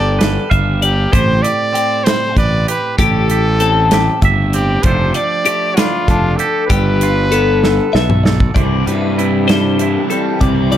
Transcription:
Already playing: fingered electric bass G1, clean electric guitar G3 G4 A4 B4, trumpet D5
0.19 clean electric guitar B4, snare, closed hi-hat
0.50 fingered electric bass G1, clean electric guitar E5 F5, kick, closed hi-hat
0.81 trumpet G4, clean electric guitar D5, closed hi-hat
1.12 fingered electric bass A1, clean electric guitar A2 C4 G4 C5, trumpet C5, kick, closed hi-hat
1.42 clean electric guitar G4 D5, trumpet D5, closed hi-hat
1.73 clean electric guitar C4 G4, closed hi-hat
2.04 trumpet C5, clean electric guitar B5, snare, closed hi-hat
2.36 fingered electric bass A1, clean electric guitar A4 B4, trumpet D5, kick, closed hi-hat
2.68 clean electric guitar G4, trumpet B4, closed hi-hat
2.98 fingered electric bass A1, clean electric guitar A2 G4, trumpet A4, kick, closed hi-hat
3.30 clean electric guitar G4, closed hi-hat
3.60 clean electric guitar C4 A4, closed hi-hat
3.91 clean electric guitar G4, snare, closed hi-hat
4.22 fingered electric bass G1, clean electric guitar E5, kick, closed hi-hat
4.53 clean electric guitar C4 D5, trumpet G4, closed hi-hat
4.83 fingered electric bass F1, clean electric guitar F3 A3 D4 G4 A4 C5, trumpet C5, kick, closed hi-hat
5.14 clean electric guitar D4 D5, trumpet D5, closed hi-hat
5.45 clean electric guitar A3 G4, closed hi-hat
5.76 clean electric guitar D4 B4, trumpet F4, snare, closed hi-hat
6.08 fingered electric bass F1, clean electric guitar D4 A4, kick, closed hi-hat
6.37 clean electric guitar G4, trumpet A4, closed hi-hat
6.67 fingered electric bass G1, clean electric guitar G3 G4 A4, trumpet B4, kick, closed hi-hat
7.01 clean electric guitar F4, closed hi-hat
7.32 clean electric guitar B3 A4, closed hi-hat
7.64 clean electric guitar A4, snare
7.93 fingered electric bass B1, clean electric guitar A4 E5, snare
8.10 mid tom
8.23 clean electric guitar A4 D5, snare
8.40 kick
8.55 fingered electric bass C2, overdriven electric guitar C3 E3 G3 C4 E4, clean electric guitar C3 D5, kick, closed hi-hat
8.86 fingered electric bass G2, clean electric guitar G3 B4, overdriven electric guitar G3 C4 E4, closed hi-hat
9.18 overdriven electric guitar E3 G3 C4 E4, clean electric guitar E4, closed hi-hat
9.48 clean electric guitar G3 C5, overdriven electric guitar G3 C4 E4, snare, closed hi-hat
9.79 overdriven electric guitar E3 G3 C4 E4, clean electric guitar E4, closed hi-hat
10.10 clean electric guitar G3 A4, overdriven electric guitar G3 C4 E4, closed hi-hat
10.41 fingered electric bass C2, overdriven electric guitar C3 E3 G3 C4 E4, clean electric guitar C3 D5, kick, closed hi-hat
10.72 clean electric guitar G3 D5, overdriven electric guitar G3 C4 E4, closed hi-hat

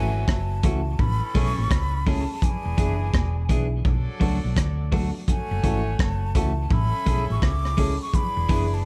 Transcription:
Already playing: fingered electric bass G#1, horn section F#3 E4 B4, flute G#5
0.28 fingered electric bass F#1, flute A5, kick, cross-stick, high conga
0.63 fingered electric bass C#2, clean electric guitar E3 A3 C#4 F#4, upright piano E4 F#4 A4, kick, closed hi-hat, high conga
0.99 fingered electric bass A1, horn section E3 C#4 A4, flute B5, kick, low conga
1.34 fingered electric bass B1, clean electric guitar G#3 C#4 E4 G#4, upright piano C#4 G#4 A4, flute C#6, kick, open hi-hat, low conga
1.58 fingered electric bass A1, muted clean electric guitar stroke, high conga
1.70 fingered electric bass C#2, flute B5, kick, cross-stick, hi-hat pedal
2.06 clean electric guitar G#3 C#4 E4 G#4, upright piano C#4 G#4 A4, flute A5, kick, open hi-hat, high conga
2.29 muted clean electric guitar stroke
2.42 horn section E3 D4 G#4, flute G#5, kick, hi-hat pedal, low conga
2.65 fingered electric bass E1
2.78 fingered electric bass F#1, clean electric guitar E3 B3 D4 G#4, upright piano D4 E4 G#4, kick, closed hi-hat
3.14 fingered electric bass E1, kick, cross-stick, high conga
3.49 fingered electric bass B1, clean electric guitar E3 B3 D4 G#4, upright piano D4 E4 G#4, kick, closed hi-hat, high conga
3.84 fingered electric bass B1, horn section F#3 D4 A4, kick, low conga
4.20 fingered electric bass C#2, clean electric guitar F#3 A3 D4 F#4, upright piano B3 D4 A4, kick, open hi-hat, low conga
4.44 fingered electric bass B1, high conga
4.57 fingered electric bass D2, kick, cross-stick, hi-hat pedal
4.92 clean electric guitar F#3 A3 D4 F#4, upright piano B3 D4 A4, kick, open hi-hat, high conga
5.15 muted clean electric guitar stroke
5.27 horn section A3 F#4 C#5, flute G#5, kick, hi-hat pedal, low conga
5.51 fingered electric bass F#1
5.63 fingered electric bass G#1, clean electric guitar E3 A3 C#4 F#4, upright piano E4 F#4 A4, kick, closed hi-hat
5.99 fingered electric bass F#1, flute A5, kick, cross-stick, high conga
6.35 fingered electric bass C#2, clean electric guitar E3 A3 C#4 F#4, upright piano E4 F#4 A4, flute A5, kick, closed hi-hat, high conga
6.69 fingered electric bass A1, horn section C#4 A4 E5, flute B5, kick, low conga
7.06 fingered electric bass B1, clean electric guitar G#3 C#4 E4 G#4, upright piano C#4 G#4 A4, kick, closed hi-hat, low conga
7.29 fingered electric bass A1, flute C#6, muted clean electric guitar stroke, high conga
7.42 fingered electric bass C#2, flute D6, kick, cross-stick
7.65 cross-stick
7.77 clean electric guitar G#3 C#4 E4 G#4, upright piano C#4 G#4 A4, kick, open hi-hat, high conga
8.02 flute C#6
8.13 horn section E3 D4 G#4, flute B5, kick, hi-hat pedal, low conga
8.37 fingered electric bass E1
8.49 fingered electric bass F#1, clean electric guitar E3 B3 D4 G#4, upright piano D4 E4 G#4, kick, open hi-hat
8.74 flute A5

